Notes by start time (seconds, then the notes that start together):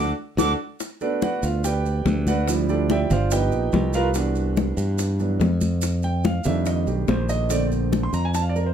Already playing: D2 D4 F#4 A4 D6
0.37 D2 D4 F#4 A4 D6, high bongo, high conga, maracas
0.80 high bongo, high conga, maracas
1.01 A3 B3 D4 F#4 A4 B4 D5, high conga, maracas
1.21 F#4 B4 D5 F#5, high bongo, high conga, maracas
1.43 D2 F4 F5, high conga, maracas
1.64 G4 B4 D5 G5, high bongo, high conga, maracas
1.85 high conga, maracas
2.05 D2, high bongo, low bongo, high conga, maracas
2.27 F#4 B4 D5 F#5, high conga, maracas
2.48 F3 G3 C4 E4, high bongo, maracas
2.69 D4 G4 A4 D5, high bongo, high conga, maracas
2.90 G4 D5 E5 G5, high bongo, high conga, maracas
3.10 G1 F4 C5 D5 F5, high bongo, high conga, low conga, maracas
3.31 F3 B3 D#4 G4 B4 D#5 G5, high bongo, high conga, maracas
3.52 A#1, high bongo, high conga, maracas
3.72 C2, high bongo, low bongo, high conga, maracas
3.93 F4 A#4 B4 F5, high conga, maracas
4.14 E3 B3 D4 F#4, high bongo, high conga, maracas
4.35 high conga, maracas
4.56 high bongo, high conga, maracas
4.77 G2, high conga, maracas
4.98 high bongo, high conga, maracas
5.19 E3 F#3 B3 D4, high conga, maracas
5.40 F2, high bongo, low bongo, high conga, maracas
5.61 high conga, maracas
5.82 high bongo, high conga, maracas
6.03 G5, high bongo, high conga, maracas
6.24 F5, high bongo, high conga, maracas
6.44 F2 D#3 G3 A3 D4 E5, high bongo, high conga, low conga, maracas
6.66 D#5, high bongo, high conga, maracas
6.87 B1 G4, high bongo, high conga, maracas
7.08 A#1 C5, high bongo, low bongo, high conga, maracas
7.29 D#5, high conga, maracas
7.50 D3 A3 C4 D5, high bongo, high conga, maracas
7.71 high conga, maracas
7.92 high bongo, high conga, maracas
8.03 C6
8.13 F2 A#5, high conga, maracas
8.25 G#5
8.34 A5, high bongo, high conga, maracas
8.42 F5
8.49 D5
8.56 A#4, high conga, maracas
8.66 C5